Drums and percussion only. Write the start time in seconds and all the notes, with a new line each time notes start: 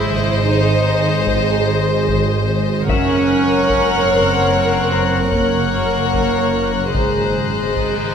1.27 taiko
2.08 taiko
2.89 taiko
3.70 taiko
5.32 taiko
6.14 taiko
6.95 taiko
7.76 taiko